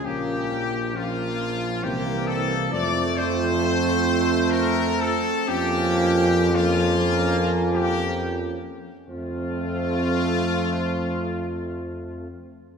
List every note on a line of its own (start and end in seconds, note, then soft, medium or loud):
0.04 1.85 A#1 medium
0.04 0.93 F3 medium
0.04 0.95 A#3 medium
0.04 0.93 C#4 medium
0.04 0.95 G4 loud
0.95 1.84 F3 medium
0.95 1.81 A#3 medium
0.95 1.81 C#4 medium
0.95 1.83 F4 loud
1.82 2.72 C2 medium
1.82 2.70 E3 medium
1.82 2.71 A#3 medium
1.82 2.55 C4 medium
1.82 2.27 G4 loud
2.26 2.71 A4 loud
2.71 5.15 F2 loud
2.71 5.14 F3 loud
2.71 5.31 A3 loud
2.71 5.44 C4 loud
2.71 3.16 D5 loud
3.17 4.51 C5 loud
4.51 4.98 A#4 loud
4.99 5.49 A4 loud
5.48 8.58 F2 loud
5.48 6.51 F3 loud
5.48 6.52 A#3 loud
5.48 6.52 C#4 loud
5.48 6.54 G4 loud
6.54 8.57 F3 loud
6.54 8.57 A#3 loud
6.54 8.57 C#4 loud
6.54 7.55 F4 loud
7.72 8.38 G4 loud
9.07 12.26 F2 medium
9.07 12.26 F3 medium
9.07 12.27 A3 medium
9.07 12.25 C4 loud
9.07 12.26 F4 loud